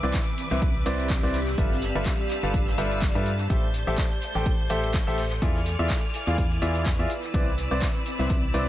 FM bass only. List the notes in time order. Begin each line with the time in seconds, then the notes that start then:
0.03 C2
0.51 C2
0.86 C2
1.23 C2
1.58 G1
1.95 G1
2.43 G1
2.78 G1
3.15 G2
3.50 A1
3.87 A1
4.35 A1
4.70 A1
5.07 A1
5.42 E2
5.79 E2
6.27 E2
6.62 E2
6.99 E2
7.34 C2
7.71 C2
8.19 C2
8.54 C2